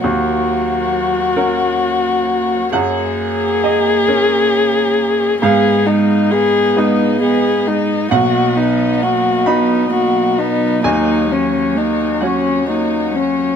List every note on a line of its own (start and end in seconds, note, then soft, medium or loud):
0.00 2.70 D#2 soft
0.00 2.74 F#3 soft
0.00 2.70 A#3 soft
0.00 2.74 F#4 soft
0.00 2.70 F#4 medium
0.00 5.43 C#5 soft
1.37 2.70 C#4 soft
1.37 2.70 A#4 medium
2.73 5.38 F#2 medium
2.73 5.39 A#3 soft
2.73 5.39 A#3 medium
2.73 5.38 G#4 medium
2.73 8.13 G#4 soft
2.73 3.59 F#5 medium
3.64 5.38 D#5 medium
4.08 5.38 C#4 soft
4.08 5.38 A#4 soft
5.41 8.08 G#2 medium
5.41 8.11 B3 soft
5.41 5.88 B3 soft
5.41 5.88 G#4 soft
5.41 10.83 D#5 soft
5.41 8.08 F5 medium
5.86 6.33 G#3 soft
5.86 6.33 D#4 soft
6.31 6.78 B3 soft
6.31 6.79 G#4 medium
6.76 7.22 G#3 soft
6.76 8.08 B3 soft
6.76 7.21 D#4 soft
6.76 8.08 G#4 soft
7.21 7.69 B3 soft
7.21 7.69 G#4 soft
7.67 8.11 G#3 soft
7.67 8.11 D#4 soft
8.11 10.80 B1 medium
8.11 13.56 F#3 soft
8.11 8.58 A#3 soft
8.11 13.56 F#4 soft
8.11 8.58 F#4 soft
8.11 9.42 F#5 medium
8.57 9.04 B3 soft
8.57 9.04 D#4 soft
9.02 9.48 A#3 soft
9.02 9.48 F#4 soft
9.46 9.91 B3 soft
9.46 9.91 D#4 soft
9.46 10.80 D#4 soft
9.46 10.80 F#4 soft
9.46 9.89 B5 medium
9.91 10.40 A#3 soft
9.91 10.40 F#4 soft
10.38 10.83 B3 soft
10.38 10.84 D#4 soft
10.84 13.56 D#2 soft
10.84 11.30 A#3 soft
10.84 11.33 D#4 soft
10.84 13.56 C#5 soft
10.84 12.18 G#5 medium
11.29 11.77 F#3 soft
11.29 11.79 C#4 soft
11.75 12.23 A#3 soft
11.75 12.25 D#4 soft
12.21 12.67 F#3 soft
12.21 13.56 C#4 soft
12.21 12.69 C#4 soft
12.21 13.56 F#4 soft
12.21 13.56 F#5 soft
12.67 13.15 A#3 soft
12.67 13.17 D#4 soft
13.14 13.56 F#3 soft
13.14 13.56 C#4 soft